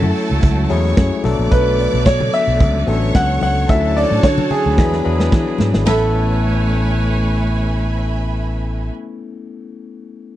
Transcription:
Already playing: F#2 F#3 A3 C#4 E4 F#4 A4 F#5 A5
0.03 high conga, low conga
0.15 open hi-hat
0.30 C#2, high conga
0.42 C#2, kick, closed hi-hat, low conga
0.69 E2 F#3 G#3 C#4 E4 G#4 C#5 C#6, open hi-hat, muted conga
0.76 A3
0.97 F#2, kick, snare, closed hi-hat, high conga
1.23 B1 D3 F#3 A3 B3 D4 A4 D5 D6, snare, open hi-hat, muted conga, high conga
1.39 A#1
1.51 B1 B4, kick, closed hi-hat, muted conga
1.78 open hi-hat, muted conga
1.94 B1, high conga
2.06 B2 C#5, kick, snare, closed hi-hat, muted conga
2.20 high conga, low conga
2.33 E5, open hi-hat
2.48 B1, high conga
2.60 C#2, kick, closed hi-hat, muted conga, low conga
2.87 A1 F#3 B3 C#4 D4 A4 C#5 C#6, open hi-hat, muted conga
3.15 C#2 F#5, kick, snare, closed hi-hat, muted conga, high conga
3.41 C#2 F#5, open hi-hat, muted conga, high conga
3.68 D2 D3 F3 C#4 D4 E4 F#4 A4 C#5 E5 A5, kick, closed hi-hat, muted conga
3.75 F#3
3.97 D5, open hi-hat
4.11 A2, high conga
4.23 D3 C#5, kick, snare, closed hi-hat
4.38 high conga, low conga
4.50 G#4, open hi-hat, muted conga, low conga
4.65 D2, high conga
4.77 E2 E3 F#3 B3 D4 E4 G#4 B4 B5, kick, snare, low conga
4.93 snare
5.04 E2 F#3 B3 D4 E4 G#4, muted conga
5.20 snare
5.32 E3, kick, snare, muted conga, high conga
5.58 G#2, snare, muted conga, high conga
5.74 G#1, snare
5.84 A1 A3 B3 C#4 A4 B4 C#5 E5 G#5 B5, snare, ride bell, high conga
5.89 E4 A4

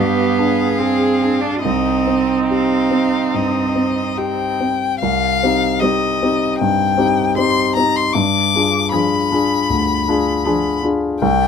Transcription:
Already playing: G2 B3 G4 F5
0.39 D4 G#4
0.79 C4 G#4
1.23 D4
1.41 D4
1.62 C2 C4 D#4 D#5
2.07 C4
2.48 G4 F5
2.91 C4
3.34 G2 D#5
3.75 C4
4.17 G4 G5
4.60 C4
4.99 C2 F5
5.43 C4 D#4 G4
5.80 G3 C4 D#4 G4 D#5
6.22 C4 D#4 G4
6.59 G2 G5
6.97 C4 D#4 G4
7.35 G3 C4 D#4 G4 C6
7.76 C4 D#4 G4 A#5
7.96 C6
8.13 G2 D6
8.55 D4 F4 G#4
8.92 F3 D4 F4 G#4 B5
9.31 D4 F4 G#4
9.70 D2
10.08 D4 F4 G#4
10.45 F3 D4 F4 G#4
10.83 D4 F4 G#4
11.22 C2 G5

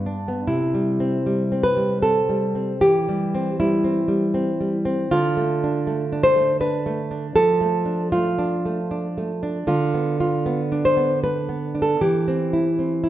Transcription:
Already playing: G2 B3
0.06 D4
0.28 B3
0.47 C3 E4
0.74 G3
1.00 C4
1.26 G3
1.52 C4
1.63 B4
1.77 G3
2.02 C4 A4
2.29 G3
2.55 C4
2.81 E3 G4
3.09 G3
3.35 C4
3.60 G3 E4
3.84 C4
4.08 G3
4.34 C4
4.61 G3
4.85 C4
5.11 D3 F4
5.37 A3
5.64 D4
5.87 A3
6.12 D4
6.23 C5
6.36 A3
6.60 D4 B4
6.86 A3
7.11 D4
7.36 F3 A4
7.61 A3
7.85 D4
8.12 A3 F4
8.38 D4
8.66 A3
8.91 D4
9.18 A3
9.43 D4
9.67 D3 F4
9.94 B3
10.20 F4
10.46 B3
10.72 D4
10.85 C5
10.97 B3
11.24 D4 B4
11.49 B3
11.75 D4
11.82 A4
12.01 E3 G4
12.28 C4
12.53 E4
12.79 C4
13.04 E4

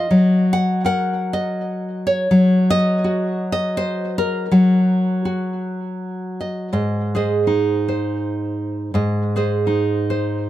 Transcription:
Already playing: D#5
0.11 F#3
0.53 F#5
0.85 A#4 F#5
1.33 D#5
2.07 C#5
2.31 F#3
2.70 D#5
3.04 F#4
3.52 D#5
3.77 C5
4.18 A#4
4.51 F#3 F#4
5.25 F#4
6.41 D#5
6.73 G#2 D#5
7.15 G#4 C5 D#5
7.47 D#4
7.88 C5
8.94 G#2 D#5
9.36 G#4 C5 D#5
9.67 D#4
10.10 C5

